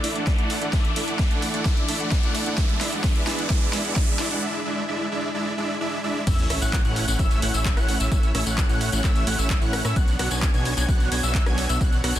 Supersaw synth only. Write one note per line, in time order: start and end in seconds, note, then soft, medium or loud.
0.04 0.13 A3 medium
0.04 0.13 D4 medium
0.04 0.13 E4 medium
0.04 0.13 D5 medium
0.04 0.13 E5 medium
0.15 0.35 A3 medium
0.15 0.35 D4 medium
0.15 0.35 E4 medium
0.15 0.35 D5 medium
0.15 0.35 F#5 medium
0.38 0.59 A3 medium
0.38 0.59 D4 medium
0.38 0.59 E4 medium
0.38 0.59 D5 medium
0.38 0.59 F#5 medium
0.62 0.71 A3 medium
0.62 0.71 D4 medium
0.62 0.71 E4 medium
0.62 0.71 D5 medium
0.62 0.71 F#5 medium
0.73 0.90 A3 medium
0.73 0.90 D4 medium
0.73 0.90 E4 medium
0.73 0.90 D5 medium
0.73 0.90 E5 medium
0.96 1.05 A3 medium
0.96 1.05 D4 medium
0.96 1.05 E4 medium
0.96 1.05 D5 medium
0.96 1.05 E5 medium
1.08 1.27 A3 medium
1.08 1.27 D4 medium
1.08 1.27 E4 medium
1.08 1.27 D5 medium
1.08 1.27 F#5 medium
1.31 1.51 A3 medium
1.31 1.51 D4 medium
1.31 1.51 E4 medium
1.31 1.51 D5 medium
1.31 1.51 F#5 medium
1.54 1.64 A3 medium
1.54 1.64 D4 medium
1.54 1.64 E4 medium
1.54 1.64 D5 medium
1.54 1.64 F#5 loud
1.65 1.83 A3 medium
1.65 1.83 D4 medium
1.65 1.83 E4 medium
1.65 1.83 D5 medium
1.65 1.83 E5 medium
1.88 1.97 A3 medium
1.88 1.97 D4 medium
1.88 1.97 E4 medium
1.88 1.97 D5 medium
1.88 1.97 E5 medium
2.00 2.20 A3 medium
2.00 2.20 D4 medium
2.00 2.20 E4 medium
2.00 2.20 D5 medium
2.00 2.20 F#5 medium
2.23 2.44 A3 medium
2.23 2.44 D4 medium
2.23 2.44 E4 medium
2.23 2.44 D5 medium
2.23 2.44 F#5 medium
2.46 2.56 A3 medium
2.46 2.56 D4 medium
2.46 2.56 E4 medium
2.46 2.56 D5 medium
2.46 2.56 F#5 loud
2.58 2.75 G#3 medium
2.58 2.75 D4 medium
2.58 2.75 E4 medium
2.58 2.75 D5 medium
2.58 2.75 E5 medium
2.81 2.90 G#3 medium
2.81 2.90 D4 medium
2.81 2.90 E4 medium
2.81 2.90 D5 medium
2.81 2.90 E5 loud
2.92 3.02 G#3 medium
2.92 3.02 D4 medium
2.92 3.02 E4 medium
2.92 3.02 D5 medium
2.92 3.02 F#5 medium
3.04 3.21 G#3 medium
3.04 3.21 D4 medium
3.04 3.21 E4 medium
3.04 3.21 D5 medium
3.04 3.21 E5 medium
3.27 3.36 G#3 medium
3.27 3.36 D4 medium
3.27 3.36 E4 medium
3.27 3.36 D5 medium
3.27 3.36 E5 loud
3.38 3.48 G#3 medium
3.38 3.48 D4 medium
3.38 3.48 E4 medium
3.38 3.48 D5 medium
3.38 3.48 F#5 medium
3.50 3.67 G#3 medium
3.50 3.67 D4 medium
3.50 3.67 E4 medium
3.50 3.67 D5 medium
3.50 3.67 E5 medium
3.73 3.82 G#3 medium
3.73 3.82 D4 medium
3.73 3.82 E4 medium
3.73 3.82 D5 medium
3.73 3.82 E5 loud
3.85 3.94 G#3 medium
3.85 3.94 D4 medium
3.85 3.94 E4 medium
3.85 3.94 D5 medium
3.85 3.94 F#5 medium
3.96 4.14 G#3 medium
3.96 4.14 D4 medium
3.96 4.14 E4 medium
3.96 4.14 D5 medium
3.96 4.14 E5 medium
4.19 4.28 G#3 medium
4.19 4.28 D4 medium
4.19 4.28 E4 medium
4.19 4.28 D5 medium
4.19 4.28 E5 loud
4.31 4.41 G#3 medium
4.31 4.41 D4 medium
4.31 4.41 E4 medium
4.31 4.41 D5 medium
4.31 4.41 F#5 medium
4.42 4.60 G#3 medium
4.42 4.60 D4 medium
4.42 4.60 E4 medium
4.42 4.60 D5 medium
4.42 4.60 E5 medium
4.66 4.83 G#3 medium
4.66 4.83 D4 medium
4.66 4.83 E4 medium
4.66 4.83 D5 medium
4.66 4.83 E5 medium
4.88 5.06 G#3 medium
4.88 5.06 D4 medium
4.88 5.06 E4 medium
4.88 5.06 D5 medium
4.88 5.06 E5 medium
5.12 5.29 G#3 medium
5.12 5.29 D4 medium
5.12 5.29 E4 medium
5.12 5.29 D5 medium
5.12 5.29 E5 medium
5.35 5.52 G#3 medium
5.35 5.52 D4 medium
5.35 5.52 E4 medium
5.35 5.52 D5 medium
5.35 5.52 E5 medium
5.58 5.75 G#3 medium
5.58 5.75 D4 medium
5.58 5.75 E4 medium
5.58 5.75 D5 medium
5.58 5.75 E5 medium
5.81 5.98 G#3 medium
5.81 5.98 D4 medium
5.81 5.98 E4 medium
5.81 5.98 D5 medium
5.81 5.98 E5 medium
6.04 6.21 G#3 medium
6.04 6.21 D4 medium
6.04 6.21 E4 medium
6.04 6.21 D5 medium
6.04 6.21 E5 medium
6.27 6.44 A3 medium
6.27 6.44 C#4 medium
6.27 6.44 E4 medium
6.27 6.44 C#5 medium
6.27 6.44 E5 medium
6.50 6.59 A3 medium
6.50 6.59 C#4 medium
6.50 6.59 E4 medium
6.50 6.59 C#5 medium
6.50 6.59 E5 loud
6.61 6.81 A3 medium
6.61 6.81 C#4 medium
6.61 6.81 E4 medium
6.61 6.81 C#5 medium
6.61 6.81 F#5 medium
6.85 7.05 A3 medium
6.85 7.05 C#4 medium
6.85 7.05 E4 medium
6.85 7.05 C#5 medium
6.85 7.05 F#5 medium
7.08 7.18 A3 medium
7.08 7.18 C#4 medium
7.08 7.18 E4 medium
7.08 7.18 C#5 medium
7.08 7.18 F#5 loud
7.19 7.40 A3 loud
7.19 7.40 C#4 medium
7.19 7.40 E4 medium
7.19 7.40 C#5 medium
7.19 7.40 E5 loud
7.42 7.52 A3 medium
7.42 7.52 C#4 medium
7.42 7.52 E4 medium
7.42 7.52 C#5 medium
7.42 7.52 F#5 loud
7.54 7.74 A3 loud
7.54 7.74 C#4 medium
7.54 7.74 E4 medium
7.54 7.74 C#5 medium
7.54 7.74 E5 loud
7.77 7.97 A3 medium
7.77 7.97 C#4 medium
7.77 7.97 E4 medium
7.77 7.97 C#5 medium
7.77 7.97 F#5 loud
8.00 8.10 A3 medium
8.00 8.10 C#4 medium
8.00 8.10 E4 medium
8.00 8.10 C#5 medium
8.00 8.10 E5 medium
8.12 8.29 A3 medium
8.12 8.29 C#4 medium
8.12 8.29 E4 medium
8.12 8.29 C#5 medium
8.12 8.29 E5 medium
8.35 8.43 A3 medium
8.35 8.44 C#4 medium
8.35 8.44 E4 medium
8.35 8.43 C#5 medium
8.35 8.44 E5 loud
8.46 8.66 A3 medium
8.46 8.66 C#4 medium
8.46 8.66 E4 medium
8.46 8.66 C#5 medium
8.46 8.66 F#5 medium
8.69 8.90 A3 medium
8.69 8.90 C#4 medium
8.69 8.90 E4 medium
8.69 8.90 C#5 medium
8.69 8.90 F#5 medium
8.92 9.02 A3 medium
8.92 9.02 C#4 medium
8.92 9.02 E4 medium
8.92 9.02 C#5 medium
8.92 9.02 F#5 loud
9.04 9.24 A3 loud
9.04 9.24 C#4 medium
9.04 9.24 E4 medium
9.04 9.24 C#5 medium
9.04 9.24 E5 loud
9.27 9.37 A3 medium
9.27 9.37 C#4 medium
9.27 9.37 E4 medium
9.27 9.37 C#5 medium
9.27 9.37 F#5 loud
9.38 9.59 A3 loud
9.38 9.59 C#4 medium
9.38 9.59 E4 medium
9.38 9.59 C#5 medium
9.38 9.59 E5 loud
9.61 9.82 A3 medium
9.61 9.82 C#4 medium
9.61 9.82 E4 medium
9.61 9.82 C#5 medium
9.61 9.82 F#5 loud
9.85 9.94 A3 medium
9.85 9.94 C#4 medium
9.85 9.94 E4 medium
9.85 9.94 C#5 medium
9.85 9.94 E5 medium
9.96 10.13 B3 medium
9.96 10.13 D4 medium
9.96 10.13 F#4 medium
9.96 10.13 C#5 medium
9.96 10.13 F#5 medium
10.19 10.28 B3 medium
10.19 10.28 D4 medium
10.19 10.28 F#4 medium
10.19 10.28 C#5 medium
10.19 10.28 F#5 loud
10.31 10.50 B3 medium
10.31 10.50 D4 medium
10.31 10.50 F#4 medium
10.31 10.50 C#5 medium
10.31 10.50 G#5 medium
10.54 10.74 B3 medium
10.54 10.74 D4 medium
10.54 10.74 F#4 medium
10.54 10.74 C#5 medium
10.54 10.74 G#5 medium
10.77 10.87 B3 medium
10.77 10.87 D4 medium
10.77 10.87 F#4 medium
10.77 10.87 C#5 medium
10.77 10.87 G#5 loud
10.88 11.09 B3 loud
10.88 11.09 D4 medium
10.88 11.09 F#4 medium
10.88 11.09 C#5 medium
10.88 11.09 F#5 loud
11.12 11.21 B3 loud
11.12 11.21 D4 medium
11.12 11.21 F#4 medium
11.12 11.21 C#5 medium
11.12 11.21 G#5 loud
11.23 11.43 B3 loud
11.23 11.43 D4 medium
11.23 11.43 F#4 medium
11.23 11.43 C#5 medium
11.23 11.43 E5 loud
11.46 11.66 B3 medium
11.46 11.66 D4 medium
11.46 11.66 F#4 medium
11.46 11.66 C#5 medium
11.46 11.66 G#5 loud
11.69 11.79 B3 medium
11.69 11.79 D4 medium
11.69 11.79 F#4 medium
11.69 11.79 C#5 medium
11.69 11.79 E5 medium
11.81 11.98 B3 medium
11.81 11.98 D4 medium
11.81 11.98 F#4 medium
11.81 11.98 C#5 medium
11.81 11.98 F#5 medium
12.04 12.13 B3 medium
12.04 12.13 D4 medium
12.04 12.13 F#4 medium
12.04 12.13 C#5 medium
12.04 12.13 F#5 loud
12.15 12.19 B3 medium
12.15 12.19 D4 medium
12.15 12.19 F#4 medium
12.15 12.19 C#5 medium
12.15 12.19 G#5 medium